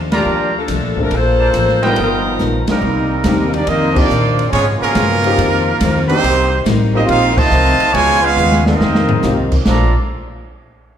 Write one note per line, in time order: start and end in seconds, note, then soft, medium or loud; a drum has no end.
0.00 0.24 D#2 medium
0.00 0.13 A#2 medium
0.00 0.13 F3 medium
0.00 0.14 A3 medium
0.00 0.14 D4 medium
0.12 0.53 F3 medium
0.12 0.54 A#3 medium
0.12 0.53 D4 medium
0.12 0.66 F4 medium
0.12 0.53 G4 medium
0.12 0.66 A#4 medium
0.12 0.66 D5 medium
0.12 0.66 A#5 loud
0.12 snare medium
0.12 ride medium
0.25 0.67 D2 medium
0.25 0.56 A#2 medium
0.25 0.57 F3 medium
0.25 0.57 A3 medium
0.25 0.58 D4 medium
0.58 0.99 F3 medium
0.58 0.99 A#3 medium
0.58 0.99 D4 medium
0.58 0.99 A4 loud
0.68 0.82 C2 medium
0.68 0.99 A#2 medium
0.68 0.99 F3 medium
0.68 1.00 A3 medium
0.68 1.00 D4 medium
0.68 kick soft
0.68 hi-hat pedal medium
0.68 ride medium
0.82 0.95 A#1 medium
0.96 1.10 A1 medium
0.96 1.10 F3 medium
0.96 1.10 A#3 medium
0.96 1.10 C4 medium
0.96 1.11 D4 medium
0.96 1.11 A4 medium
0.96 kick soft
1.02 1.14 F3 medium
1.02 1.14 A3 medium
1.02 1.14 D4 medium
1.02 1.14 A#4 loud
1.11 1.53 A#1 medium
1.11 1.42 A#2 soft
1.11 1.42 F3 soft
1.11 1.43 A3 soft
1.11 1.43 D4 medium
1.11 kick soft
1.11 ride medium
1.15 1.85 A#3 loud
1.15 1.85 F4 loud
1.15 1.85 A4 loud
1.15 1.85 C5 loud
1.40 1.49 F4 medium
1.40 1.49 A#4 medium
1.40 1.49 D5 medium
1.40 1.49 A5 medium
1.54 1.95 A1 medium
1.54 1.85 A#2 medium
1.54 1.85 F3 medium
1.54 1.85 A3 medium
1.54 1.86 D4 medium
1.54 kick soft
1.54 hi-hat pedal medium
1.54 ride medium
1.68 snare soft
1.82 1.96 G3 medium
1.82 2.36 B3 medium
1.82 1.96 B3 medium
1.82 1.96 D#4 medium
1.82 2.36 F4 loud
1.82 1.96 F4 medium
1.82 1.97 A#4 medium
1.82 2.36 D#5 medium
1.82 2.36 G5 loud
1.82 snare soft
1.82 ride medium
1.88 1.98 F3 medium
1.88 1.99 A3 medium
1.88 1.98 D4 medium
1.88 1.98 A#4 medium
1.96 2.38 G1 medium
1.96 2.27 G2 medium
1.96 2.66 D#3 medium
1.96 2.28 F3 soft
1.96 2.66 F3 medium
1.96 2.28 B3 soft
1.96 2.28 D#4 medium
1.96 kick soft
1.96 ride medium
2.00 2.67 F3 medium
2.00 2.67 B3 medium
2.00 2.67 D#4 medium
2.00 2.66 A#4 medium
2.00 2.67 A#4 medium
2.39 2.66 A#1 medium
2.39 2.69 G2 medium
2.39 2.70 F3 medium
2.39 2.70 B3 medium
2.39 2.70 D#4 medium
2.39 snare medium
2.39 hi-hat pedal medium
2.67 3.50 D#3 medium
2.67 2.81 G3 medium
2.67 3.50 G3 medium
2.67 3.51 G3 medium
2.67 3.50 A#3 medium
2.67 2.81 C4 medium
2.67 3.51 C4 medium
2.67 2.81 D4 medium
2.67 2.82 D#4 medium
2.67 3.51 D#4 medium
2.67 2.82 A#4 medium
2.67 3.51 A#4 medium
2.67 muted upright bass stroke soft
2.67 snare medium
2.67 ride medium
2.80 3.23 C2 loud
2.80 3.12 C3 medium
2.80 3.12 G3 medium
2.80 3.12 A#3 medium
2.80 3.13 D#4 medium
3.24 3.66 D#2 loud
3.24 3.55 C3 medium
3.24 3.55 G3 medium
3.24 3.67 A#3 medium
3.24 3.56 A#3 medium
3.24 3.67 C4 medium
3.24 3.68 D4 medium
3.24 3.68 D#4 medium
3.24 3.56 D#4 medium
3.24 3.68 G4 medium
3.24 kick soft
3.24 snare medium
3.24 hi-hat pedal medium
3.24 ride medium
3.53 3.68 A#3 medium
3.53 3.67 D4 medium
3.53 3.68 D#4 medium
3.53 3.68 G4 medium
3.53 3.68 D5 medium
3.53 ride medium
3.65 4.09 F2 medium
3.65 3.98 F2 medium
3.65 3.90 A#3 medium
3.65 3.95 C4 medium
3.65 3.96 C4 medium
3.65 3.95 D#4 medium
3.65 3.97 F4 medium
3.65 3.96 A#4 medium
3.65 3.97 D#5 loud
3.65 kick soft
3.65 ride medium
3.69 3.99 D#3 medium
3.69 3.99 A#3 medium
3.69 3.99 C4 medium
3.91 4.47 D#3 medium
3.91 4.47 A#3 medium
3.91 4.08 A#3 medium
3.91 4.08 C4 medium
3.91 4.47 D4 medium
3.96 4.50 C4 medium
3.96 4.08 D#4 medium
3.96 4.09 F4 medium
3.96 4.50 F4 medium
3.96 4.09 G4 medium
3.96 4.50 A#4 medium
3.96 4.50 D5 loud
3.96 kick loud
3.96 crash medium
4.09 4.41 F2 medium
4.09 4.51 A#2 loud
4.09 4.41 D#3 medium
4.09 4.42 A#3 medium
4.09 4.42 C4 medium
4.09 hi-hat pedal medium
4.39 ride medium
4.49 4.80 G#2 loud
4.49 4.83 C#3 soft
4.49 4.63 F3 medium
4.49 4.63 G#3 medium
4.49 4.65 B3 medium
4.49 4.63 C#4 medium
4.49 4.65 F4 medium
4.49 4.66 C#5 loud
4.53 4.84 G#3 soft
4.53 4.84 B3 medium
4.53 4.85 F4 medium
4.53 4.66 G#4 medium
4.53 kick soft
4.53 ride medium
4.77 5.32 B2 medium
4.77 6.04 F3 medium
4.77 6.04 A#3 medium
4.77 muted upright bass stroke soft
4.82 5.35 C#4 medium
4.82 6.06 F4 medium
4.82 5.35 G#4 medium
4.82 6.06 A#4 loud
4.95 5.37 G2 medium
4.95 5.25 C#3 medium
4.95 5.26 G#3 medium
4.95 5.26 B3 medium
4.95 5.27 F4 medium
4.95 kick soft
4.95 snare medium
4.95 hi-hat pedal medium
4.95 ride medium
5.24 5.79 A#3 medium
5.24 5.79 C4 medium
5.24 5.79 D#4 medium
5.24 5.79 F4 medium
5.24 5.80 G4 medium
5.24 ride medium
5.38 5.79 F2 medium
5.38 5.68 F2 medium
5.38 5.69 D#3 medium
5.38 5.69 A#3 medium
5.38 5.70 C4 medium
5.38 kick soft
5.38 ride medium
5.80 6.22 D2 medium
5.80 6.12 F2 medium
5.80 6.12 D#3 medium
5.80 6.12 A#3 medium
5.80 6.13 C4 medium
5.80 kick soft
5.80 snare medium
5.80 hi-hat pedal medium
5.80 ride medium
6.06 6.61 D#3 medium
6.06 6.61 G3 medium
6.06 6.62 A#3 medium
6.06 6.22 A#3 medium
6.06 6.61 C4 medium
6.06 6.23 C4 medium
6.06 6.61 D#4 medium
6.06 6.62 G4 medium
6.06 6.62 C5 loud
6.06 ride medium
6.11 6.23 D4 medium
6.11 6.23 D#4 medium
6.11 6.23 G4 medium
6.23 6.65 C2 loud
6.23 6.54 C3 medium
6.23 6.54 G3 soft
6.23 6.55 A#3 medium
6.23 6.55 D#4 medium
6.23 kick soft
6.23 ride medium
6.64 7.08 A1 loud
6.64 6.96 C3 medium
6.64 6.96 G3 medium
6.64 6.97 A#3 medium
6.64 6.97 D#4 medium
6.64 kick soft
6.64 snare medium
6.64 hi-hat pedal medium
6.64 ride medium
6.92 7.07 G3 medium
6.92 7.05 A#3 medium
6.92 7.49 A#3 medium
6.92 7.49 C4 medium
6.92 7.08 C4 medium
6.92 7.07 D#4 medium
6.92 7.49 D#4 medium
6.92 7.50 F4 medium
6.92 7.08 G4 medium
6.92 7.08 A#4 medium
6.92 7.08 D#5 loud
6.96 7.50 G4 medium
7.06 7.50 A#1 medium
7.06 7.39 F3 medium
7.06 7.35 A#3 loud
7.06 7.34 C4 loud
7.06 7.39 C4 medium
7.06 7.40 D#4 medium
7.06 7.37 D#4 loud
7.06 7.34 F4 loud
7.06 7.36 A#4 medium
7.06 7.36 C5 medium
7.06 7.36 F5 loud
7.06 kick soft
7.06 ride medium
7.10 7.40 A#4 medium
7.35 7.93 C3 loud
7.35 7.93 D#3 loud
7.35 7.93 A3 medium
7.35 7.92 F4 loud
7.35 7.95 C5 loud
7.35 7.95 D#5 loud
7.35 7.94 A5 loud
7.35 kick loud
7.35 crash medium
7.50 7.78 C2 loud
7.50 7.81 F3 medium
7.50 7.82 C4 medium
7.50 7.82 D#4 medium
7.50 7.82 A#4 medium
7.50 hi-hat pedal medium
7.80 ride medium
7.92 8.36 C#2 loud
7.92 8.22 B2 loud
7.92 8.24 C#3 soft
7.92 8.22 F3 loud
7.92 8.18 G#3 loud
7.92 8.25 G#3 medium
7.92 8.26 B3 medium
7.92 8.23 F4 loud
7.92 8.22 B4 loud
7.92 8.23 C#5 loud
7.92 8.23 G#5 loud
7.92 kick soft
7.92 ride medium
7.96 8.26 F4 medium
8.19 8.64 G#3 medium
8.19 8.65 B3 medium
8.19 8.64 F4 medium
8.19 8.66 B4 medium
8.23 8.67 C#4 medium
8.23 8.67 G#4 medium
8.23 8.66 F5 loud
8.37 8.79 D#2 loud
8.37 8.68 C#3 medium
8.37 8.68 G#3 medium
8.37 8.69 B3 medium
8.37 8.69 F4 medium
8.37 hi-hat pedal medium
8.52 snare medium
8.65 9.48 A#3 medium
8.65 9.48 C4 medium
8.65 9.49 C4 medium
8.65 9.48 D#4 medium
8.65 9.49 F4 medium
8.65 9.48 A#4 medium
8.65 9.49 D#5 medium
8.65 snare medium
8.79 9.10 F2 medium
8.79 9.22 F2 medium
8.79 9.11 D#3 medium
8.79 9.11 A#3 medium
8.79 9.12 C4 medium
8.79 snare medium
8.95 snare medium
9.09 floor tom loud
9.22 9.65 C2 loud
9.22 9.54 F2 medium
9.22 9.54 D#3 medium
9.22 9.49 A#3 medium
9.22 9.55 A#3 medium
9.22 9.50 C4 medium
9.22 9.55 C4 medium
9.22 9.50 D#4 medium
9.22 9.50 F4 medium
9.22 9.50 G4 medium
9.22 snare medium
9.22 hi-hat pedal medium
9.52 kick medium
9.52 crash medium
9.65 9.93 A#1 loud
9.65 9.93 A#2 loud
9.65 9.89 A#2 medium
9.65 9.92 F3 medium
9.65 9.90 F3 medium
9.65 9.93 A3 medium
9.65 9.90 A3 medium
9.65 9.93 A#3 medium
9.65 9.93 C4 medium
9.65 9.93 D4 medium
9.65 9.93 F4 medium
9.65 9.94 F4 medium
9.65 9.93 A4 medium
9.65 9.94 A4 medium
9.65 9.94 D5 medium
9.65 9.94 A#5 medium
9.65 snare loud
9.65 splash medium
9.69 9.91 D4 medium